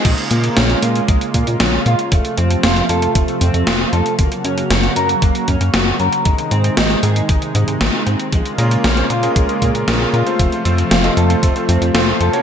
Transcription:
<<
  \new Staff \with { instrumentName = "Electric grand piano" } { \time 4/4 \key bes \minor \tempo 4 = 116 r1 | r1 | r1 | r1 |
r8 <bes des' f' aes' bes'>8. <bes des' f' aes' c''>16 r16 <bes des' f' aes' bes'>8 <bes des' f' aes' bes'>8. <bes des' f' aes' bes'>8. <a c' f' a' c''>16~ | <a c' f' a' c''>8 <a c' f' a' c''>8. <a c' f' a' ees''>16 r16 <a c' f' a' c''>8 <a c' f' a' c''>8. <a c' f' a' c''>8. <bes des' ges' bes' des''>16 | }
  \new Staff \with { instrumentName = "Clean electric guitar" } { \time 4/4 \key bes \minor aes8 bes8 des'8 f'8 aes8 bes8 des'8 f'8 | a8 c'8 f'8 a'8 a8 c'8 f'8 a'8 | bes8 des'8 ges'8 bes'8 bes8 des'8 ges'8 bes'8 | aes8 c'8 ees'8 aes'8 aes8 aes8 aes8 c'8 |
aes8 bes8 des'8 f'8 aes8 bes8 des'8 f'8 | a8 c'8 f'8 a'8 a8 c'8 f'8 a'8 | }
  \new Staff \with { instrumentName = "Analog synth pad" } { \clef bass \time 4/4 \key bes \minor << { f'1~ | f'1 | ges'1 | ees'1 |
f'1~ | f'1 | } \\ { <des aes bes>1 | <c f a>1 | <des ges bes>1 | <c ees aes>1 |
<des aes bes>1 | <c f a>1 | } >> }
  \new Staff \with { instrumentName = "Analog synth bass" } { \clef bass \time 4/4 \key bes \minor bes,,16 r16 bes,16 r16 bes,,16 r16 bes,16 r16 bes,,16 r16 bes,16 bes,16 bes,,16 r16 bes,16 r16 | f,,16 r16 f,16 r16 f,,16 r16 f,16 r16 f,,16 r16 f,16 f,16 f,,16 r16 f,16 r16 | ges,,16 r16 ges,16 r16 ges,,16 r16 ges,16 r16 ges,,16 r16 ges,16 ges,16 ges,,16 r16 ges,16 r16 | aes,,16 r16 aes,16 r16 aes,,16 r16 aes,16 r16 aes,,16 r16 aes,16 aes,16 aes,,16 r16 aes,16 r16 |
bes,,16 r16 bes,16 r16 bes,,16 r16 bes,16 r16 bes,,16 r16 bes,16 bes,16 bes,,16 r16 bes,16 r16 | f,,16 r16 f,16 r16 f,,16 r16 f,16 r16 f,,16 r16 f,16 f,16 f,,16 r16 f,16 r16 | }
  \new DrumStaff \with { instrumentName = "Drums" } \drummode { \time 4/4 <cymc hh bd>16 hh16 hh16 hh16 <hh sn>16 hh16 hh16 hh16 <hh bd>16 hh16 <hh bd>16 hh16 <hh sn>8 hh16 hh16 | <hh bd>16 hh16 hh16 hh16 <hh sn>16 hh16 hh16 hh16 <hh bd>16 hh16 hh16 hh16 <hh sn>8 hh16 hh16 | <hh bd>16 hh16 hh16 hh16 <hh sn>16 hh16 hh16 hh16 <hh bd>16 hh16 <hh bd>16 hh16 <hh sn>8 hh16 hh16 | <hh bd>16 hh16 hh16 hh16 <hh sn>16 hh16 hh16 hh16 <hh bd>16 hh16 hh16 hh16 <hh sn>8 hh16 hh16 |
<hh bd>16 hh16 hh16 hh16 <hh sn>16 hh16 hh16 hh16 <hh bd>16 hh16 <hh bd>16 hh16 <hh sn>8 hh16 hh16 | <hh bd>16 hh16 hh16 hh16 <hh sn>16 hh16 hh16 hh16 <hh bd>16 hh16 hh16 hh16 <hh sn>8 hh16 hh16 | }
>>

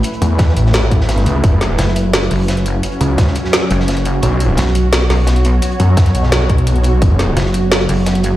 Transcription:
<<
  \new Staff \with { instrumentName = "Synth drone" } { \time 4/4 \key fis \minor \tempo 4 = 172 <a e' b'>1 | <fis cis' fis'>1~ | <fis cis' fis'>1 | <b cis''>1~ |
<b cis''>1 | <fis cis'>1 | }
  \new Staff \with { instrumentName = "Detuned saw bass" } { \clef bass \time 4/4 \key fis \minor r8 e,4 a,,8 a,,4. cis,8 | fis,,4 r2. | r8 cis,4 r2 r8 | b,,4 r2. |
r8 fis,4 b,,2~ b,,8 | fis,,4 r2. | }
  \new Staff \with { instrumentName = "Wobble bass" } { \clef bass \time 4/4 \key fis \minor r1 | r4 fis,,4. fis,,4. | r2 r8 fis,,4. | r4 b,,4. b,,4. |
r1 | r4 fis,,4. fis,,4. | }
  \new DrumStaff \with { instrumentName = "Drums" } \drummode { \time 4/4 hh16 hh16 hh8 <hh bd sn>16 sn16 hh16 sn16 <hh sn>8 <hh bd>16 sn16 <hh sn>16 <hh sn>16 hh8 | <hh bd>8 <hh sn>8 <hh sn>16 sn16 hh8 <hh sn>16 hh16 <hh hho>8 <hh sn>16 hh16 hh8 | hh16 hh16 hh8 <hh bd sn>16 sn16 hh16 sn16 <hh sn>8 hh16 sn16 <hh sn>16 <hh sn>16 hh8 | hh8 hh8 <hh sn>16 sn16 hh8 <hh sn>16 hh16 <hh hho sn>8 <hh sn>16 hh16 hh8 |
hh16 hh16 hh8 <hh bd sn>16 <hh sn>16 hh16 sn16 <hh sn>8 <hh bd>16 hh16 hh16 hh16 hh8 | <hh bd>8 <hh ss sn>8 <hh sn>16 sn16 hh8 <hh sn>16 hh16 <hh hho>8 <hh sn>16 hh16 hh8 | }
>>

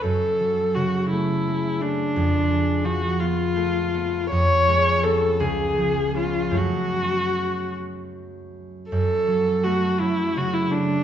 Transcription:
<<
  \new Staff \with { instrumentName = "Viola" } { \time 6/8 \key fis \minor \tempo 4. = 55 a'4 fis'8 e'4 d'8~ | d'4 fis'8 f'4. | cis''4 a'8 gis'4 eis'8 | fis'4. r4. |
a'4 fis'8 e'8 fis'16 e'16 d'8 | }
  \new Staff \with { instrumentName = "Harp" } { \clef bass \time 6/8 \key fis \minor <fis, cis'>8 fis8 cis8 a8 gis8 a8 | f,8 aes8 f8 ces'8 a8 ces'8 | eis,8 gis8 <b cis'>8 cis,8 eis8 <b cis'>8 | <fis, fis a cis'>2. |
fis,8 fis8 a8 fis8 cis8 a8 | }
>>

